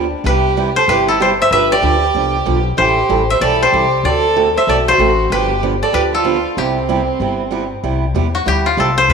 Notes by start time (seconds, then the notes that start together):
Already playing: D2 G4 A4 B4
0.24 C2 C3 G3 B3 E4 G4 B4
0.57 C3 G3 B3 E4 G4
0.76 A4 C5
0.88 G1 C3 G3 B3 E4 G4 B4
1.08 E4 A4
1.20 C3 G3 B3 E4 G4 C5
1.40 C5 E5
1.51 G1 D3 F3 B3 D4 G4 B4 E5
1.72 G4 D5
1.82 D2 D3 F3 B3 D4 G4
2.15 C2 D3 F3 B3 D4 G4
2.46 B1 D3 F3 B3 D4 G4
2.77 A1 E3 G3 C4 E4 G4 A4 C5
3.09 A1 E3 G3 C4 E4 A4
3.30 C5 E5
3.41 B1 E3 G3 C4 E4 A4 D5
3.63 G4 C5
3.73 C2 E3 G3 C4 E4 A4
4.04 D2 D3 A3 C4 F#4 A4 D5
4.36 D3 A3 C4 F#4 A4
4.56 C5 E5
4.67 B1 D3 A3 C4 F#4 A4 D5
4.88 F#4 C5
4.98 A1 D3 A3 C4 F#4 A4
5.30 G1 D3 F3 B3 D4 G4 B4
5.63 D3 F3 B3 D4 G4
5.83 A4 D5
5.93 D2 D3 F3 B3 D4 G4 B4
6.13 F4 A4
6.24 D3 F3 B3 D4 G4
6.57 C2 C3 G3 B3 C4 E4 G4
6.89 C3 G3 B3 E4 G4
7.20 G1 C3 G3 B3 E4 G4
7.51 C3 G3 B3 E4 G4
7.84 C2 C3 G3 B3 E4 G4
8.15 E2 C3 G3 B3 E4 G4
8.35 F#4
8.46 D2 C3 G3 B3 E4 G4
8.66 F4
8.77 C2 C3 G3 B3 E4 G4 A4
8.98 C5
9.09 E2 E3 B3 B4